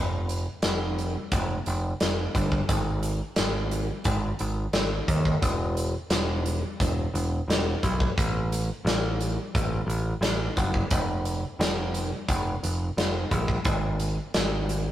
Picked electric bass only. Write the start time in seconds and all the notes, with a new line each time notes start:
Already playing: F1
0.64 F1
1.32 F1
1.67 F1
2.01 F1
2.35 G1
2.69 G#1
3.38 G#1
4.05 G#1
4.40 G#1
4.73 G#1
5.08 D#2
5.42 E1
6.10 E1
6.81 E1
7.14 E1
7.48 E1
7.83 B1
8.18 A1
8.85 A1
9.55 A1
9.86 A1
10.21 A1
10.57 F#1
10.92 F1
11.59 F1
12.29 F1
12.63 F1
12.97 F1
13.31 A#1
13.65 G#1
14.36 G#1